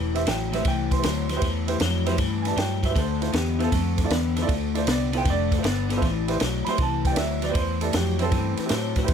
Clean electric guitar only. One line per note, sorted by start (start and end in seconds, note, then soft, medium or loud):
0.00 0.25 A2 medium
0.00 0.25 E3 medium
0.26 0.50 A2 medium
0.26 0.50 F#3 loud
0.52 0.64 A2 medium
0.52 0.64 F#3 medium
0.65 1.01 A2 medium
0.65 1.01 E3 medium
1.03 1.27 A2 medium
1.03 1.27 F#3 medium
1.29 1.40 A2 medium
1.29 1.41 F#3 medium
1.42 1.78 A2 medium
1.42 1.78 E3 medium
1.81 2.04 A2 medium
1.81 2.05 F#3 loud
2.07 2.17 A2 medium
2.07 2.18 F#3 medium
2.18 2.55 A2 medium
2.18 2.55 E3 medium
2.56 2.80 A2 medium
2.56 2.80 F#3 loud
2.83 2.94 A2 medium
2.83 2.94 F#3 medium
2.95 3.31 D3 medium
2.95 3.31 A3 medium
3.33 3.57 D3 medium
3.33 3.57 B3 loud
3.59 3.71 D3 medium
3.59 3.71 B3 medium
3.72 4.08 D3 medium
3.72 4.08 A3 medium
4.11 4.34 D3 medium
4.11 4.34 B3 medium
4.36 4.46 D3 medium
4.36 4.47 B3 medium
4.48 4.84 D3 medium
4.48 4.84 A3 loud
4.87 5.11 D3 medium
4.87 5.11 B3 medium
5.12 5.24 D3 medium
5.12 5.24 B3 medium
5.25 5.61 D3 medium
5.25 5.61 A3 loud
5.63 5.87 D3 medium
5.63 5.87 B3 loud
5.89 6.00 D3 medium
5.89 6.01 B3 medium
6.02 6.38 A2 medium
6.02 6.38 E3 medium
6.40 6.64 A2 medium
6.40 6.64 F#3 loud
6.66 6.77 A2 medium
6.66 6.78 F#3 loud
6.79 7.15 A2 medium
6.79 7.15 E3 loud
7.16 7.40 A2 medium
7.16 7.40 F#3 loud
7.42 7.52 A2 medium
7.42 7.54 F#3 medium
7.53 7.90 A2 medium
7.53 7.91 E3 medium
7.93 8.17 A2 medium
7.93 8.17 F#3 loud
8.19 8.30 A2 medium
8.19 8.31 F#3 medium
8.32 8.68 A2 medium
8.32 8.68 E3 loud
8.69 8.93 A2 medium
8.69 8.93 F#3 medium
8.96 9.07 A2 medium
8.96 9.08 F#3 medium
9.09 9.14 E2 medium
9.09 9.14 B2 medium